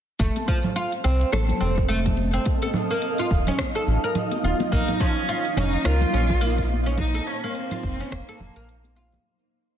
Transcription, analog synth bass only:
0, 0, Header, 1, 2, 480
1, 0, Start_track
1, 0, Key_signature, -5, "minor"
1, 0, Tempo, 566038
1, 164, Time_signature, 4, 2, 24, 8
1, 8290, End_track
2, 0, Start_track
2, 0, Title_t, "Analog synth bass"
2, 0, Program_c, 0, 38
2, 166, Note_on_c, 0, 29, 99
2, 255, Note_off_c, 0, 29, 0
2, 888, Note_on_c, 0, 36, 92
2, 1054, Note_off_c, 0, 36, 0
2, 1125, Note_on_c, 0, 33, 96
2, 1293, Note_off_c, 0, 33, 0
2, 1365, Note_on_c, 0, 29, 91
2, 2027, Note_off_c, 0, 29, 0
2, 2807, Note_on_c, 0, 27, 93
2, 2974, Note_off_c, 0, 27, 0
2, 3283, Note_on_c, 0, 33, 85
2, 3373, Note_off_c, 0, 33, 0
2, 3763, Note_on_c, 0, 27, 101
2, 3853, Note_off_c, 0, 27, 0
2, 4004, Note_on_c, 0, 34, 94
2, 4094, Note_off_c, 0, 34, 0
2, 4720, Note_on_c, 0, 29, 93
2, 4891, Note_off_c, 0, 29, 0
2, 4962, Note_on_c, 0, 37, 95
2, 5131, Note_off_c, 0, 37, 0
2, 5204, Note_on_c, 0, 34, 84
2, 6107, Note_off_c, 0, 34, 0
2, 6645, Note_on_c, 0, 29, 91
2, 6813, Note_off_c, 0, 29, 0
2, 6884, Note_on_c, 0, 29, 83
2, 6973, Note_off_c, 0, 29, 0
2, 7119, Note_on_c, 0, 29, 90
2, 7211, Note_off_c, 0, 29, 0
2, 7259, Note_on_c, 0, 34, 80
2, 7784, Note_off_c, 0, 34, 0
2, 8290, End_track
0, 0, End_of_file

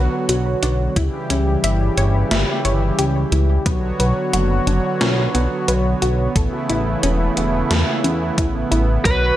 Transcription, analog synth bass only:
0, 0, Header, 1, 2, 480
1, 0, Start_track
1, 0, Tempo, 674157
1, 686, Time_signature, 4, 2, 24, 8
1, 6669, End_track
2, 0, Start_track
2, 0, Title_t, "Analog synth bass"
2, 0, Program_c, 0, 38
2, 205, Note_on_c, 0, 35, 104
2, 395, Note_off_c, 0, 35, 0
2, 446, Note_on_c, 0, 35, 75
2, 636, Note_off_c, 0, 35, 0
2, 686, Note_on_c, 0, 37, 91
2, 781, Note_off_c, 0, 37, 0
2, 926, Note_on_c, 0, 37, 97
2, 1116, Note_off_c, 0, 37, 0
2, 1164, Note_on_c, 0, 31, 84
2, 1355, Note_off_c, 0, 31, 0
2, 1406, Note_on_c, 0, 31, 91
2, 1596, Note_off_c, 0, 31, 0
2, 1646, Note_on_c, 0, 31, 95
2, 1741, Note_off_c, 0, 31, 0
2, 1887, Note_on_c, 0, 31, 82
2, 2076, Note_off_c, 0, 31, 0
2, 2127, Note_on_c, 0, 37, 98
2, 2316, Note_off_c, 0, 37, 0
2, 2365, Note_on_c, 0, 37, 81
2, 2555, Note_off_c, 0, 37, 0
2, 2606, Note_on_c, 0, 35, 92
2, 2796, Note_off_c, 0, 35, 0
2, 2845, Note_on_c, 0, 35, 80
2, 2940, Note_off_c, 0, 35, 0
2, 3085, Note_on_c, 0, 30, 96
2, 3275, Note_off_c, 0, 30, 0
2, 3325, Note_on_c, 0, 30, 92
2, 3420, Note_off_c, 0, 30, 0
2, 3566, Note_on_c, 0, 35, 74
2, 3756, Note_off_c, 0, 35, 0
2, 3807, Note_on_c, 0, 35, 85
2, 3901, Note_off_c, 0, 35, 0
2, 4047, Note_on_c, 0, 35, 100
2, 4236, Note_off_c, 0, 35, 0
2, 4286, Note_on_c, 0, 35, 80
2, 4476, Note_off_c, 0, 35, 0
2, 4526, Note_on_c, 0, 33, 92
2, 4621, Note_off_c, 0, 33, 0
2, 4767, Note_on_c, 0, 33, 95
2, 4956, Note_off_c, 0, 33, 0
2, 5008, Note_on_c, 0, 28, 83
2, 5197, Note_off_c, 0, 28, 0
2, 5247, Note_on_c, 0, 28, 90
2, 5436, Note_off_c, 0, 28, 0
2, 5487, Note_on_c, 0, 40, 98
2, 5581, Note_off_c, 0, 40, 0
2, 5726, Note_on_c, 0, 40, 82
2, 5916, Note_off_c, 0, 40, 0
2, 5966, Note_on_c, 0, 33, 94
2, 6156, Note_off_c, 0, 33, 0
2, 6207, Note_on_c, 0, 33, 82
2, 6396, Note_off_c, 0, 33, 0
2, 6446, Note_on_c, 0, 35, 93
2, 6636, Note_off_c, 0, 35, 0
2, 6669, End_track
0, 0, End_of_file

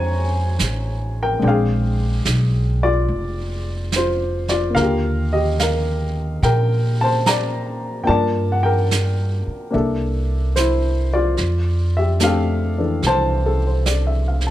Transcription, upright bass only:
0, 0, Header, 1, 3, 480
1, 0, Start_track
1, 0, Key_signature, -1, "major"
1, 0, Tempo, 827586
1, 833, Time_signature, 4, 2, 24, 8
1, 8413, End_track
2, 0, Start_track
2, 0, Title_t, "Upright bass"
2, 0, Program_c, 0, 32
2, 0, Note_on_c, 0, 41, 70
2, 329, Note_off_c, 0, 41, 0
2, 350, Note_on_c, 0, 33, 59
2, 807, Note_off_c, 0, 33, 0
2, 825, Note_on_c, 0, 34, 74
2, 1285, Note_off_c, 0, 34, 0
2, 1308, Note_on_c, 0, 35, 67
2, 1768, Note_off_c, 0, 35, 0
2, 1788, Note_on_c, 0, 29, 61
2, 2735, Note_off_c, 0, 29, 0
2, 2761, Note_on_c, 0, 39, 69
2, 3701, Note_off_c, 0, 39, 0
2, 3726, Note_on_c, 0, 46, 70
2, 4664, Note_off_c, 0, 46, 0
2, 4689, Note_on_c, 0, 43, 69
2, 5470, Note_off_c, 0, 43, 0
2, 5649, Note_on_c, 0, 36, 73
2, 6580, Note_off_c, 0, 36, 0
2, 6603, Note_on_c, 0, 41, 64
2, 7535, Note_off_c, 0, 41, 0
2, 7559, Note_on_c, 0, 36, 71
2, 8413, Note_off_c, 0, 36, 0
2, 8413, End_track
3, 0, Start_track
3, 0, Title_t, "Muted upright bass strokes"
3, 5493, Note_on_c, 9, 29, 31
3, 5551, Note_off_c, 9, 29, 0
3, 8413, End_track
0, 0, End_of_file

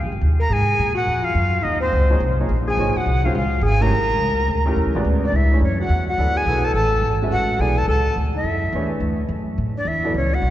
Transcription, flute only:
0, 0, Header, 1, 2, 480
1, 0, Start_track
1, 0, Tempo, 283554
1, 860, Time_signature, 4, 2, 24, 8
1, 17778, End_track
2, 0, Start_track
2, 0, Title_t, "Flute"
2, 0, Program_c, 0, 73
2, 690, Note_on_c, 0, 82, 86
2, 897, Note_on_c, 0, 80, 98
2, 922, Note_off_c, 0, 82, 0
2, 1616, Note_off_c, 0, 80, 0
2, 1626, Note_on_c, 0, 78, 89
2, 2104, Note_on_c, 0, 77, 87
2, 2130, Note_off_c, 0, 78, 0
2, 2764, Note_on_c, 0, 75, 89
2, 2790, Note_off_c, 0, 77, 0
2, 3064, Note_off_c, 0, 75, 0
2, 3075, Note_on_c, 0, 72, 77
2, 3969, Note_off_c, 0, 72, 0
2, 4563, Note_on_c, 0, 80, 80
2, 5026, Note_on_c, 0, 78, 85
2, 5051, Note_off_c, 0, 80, 0
2, 5507, Note_on_c, 0, 77, 76
2, 5532, Note_off_c, 0, 78, 0
2, 5678, Note_off_c, 0, 77, 0
2, 5704, Note_on_c, 0, 77, 80
2, 6132, Note_off_c, 0, 77, 0
2, 6178, Note_on_c, 0, 80, 104
2, 6465, Note_on_c, 0, 82, 100
2, 6491, Note_off_c, 0, 80, 0
2, 8078, Note_off_c, 0, 82, 0
2, 8892, Note_on_c, 0, 74, 72
2, 9074, Note_on_c, 0, 76, 71
2, 9099, Note_off_c, 0, 74, 0
2, 9530, Note_off_c, 0, 76, 0
2, 9543, Note_on_c, 0, 73, 77
2, 9800, Note_off_c, 0, 73, 0
2, 9836, Note_on_c, 0, 78, 87
2, 10267, Note_off_c, 0, 78, 0
2, 10298, Note_on_c, 0, 78, 89
2, 10786, Note_on_c, 0, 80, 101
2, 10811, Note_off_c, 0, 78, 0
2, 11246, Note_on_c, 0, 81, 95
2, 11272, Note_off_c, 0, 80, 0
2, 11420, Note_off_c, 0, 81, 0
2, 11431, Note_on_c, 0, 81, 92
2, 12150, Note_off_c, 0, 81, 0
2, 12400, Note_on_c, 0, 78, 99
2, 12881, Note_on_c, 0, 80, 91
2, 12906, Note_off_c, 0, 78, 0
2, 13171, Note_on_c, 0, 81, 89
2, 13196, Note_off_c, 0, 80, 0
2, 13351, Note_off_c, 0, 81, 0
2, 13358, Note_on_c, 0, 81, 86
2, 13799, Note_off_c, 0, 81, 0
2, 14153, Note_on_c, 0, 76, 71
2, 15030, Note_off_c, 0, 76, 0
2, 16548, Note_on_c, 0, 74, 77
2, 16720, Note_on_c, 0, 76, 75
2, 16745, Note_off_c, 0, 74, 0
2, 17191, Note_off_c, 0, 76, 0
2, 17211, Note_on_c, 0, 73, 77
2, 17507, Note_on_c, 0, 78, 88
2, 17533, Note_off_c, 0, 73, 0
2, 17778, Note_off_c, 0, 78, 0
2, 17778, End_track
0, 0, End_of_file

